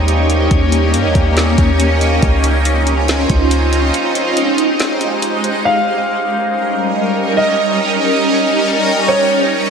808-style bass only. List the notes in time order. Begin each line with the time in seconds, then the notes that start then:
Already playing: D#2
0.51 D#2
0.94 G2
1.05 D#2
1.15 D#2
1.58 D#2
2.23 C#2
3.30 C#2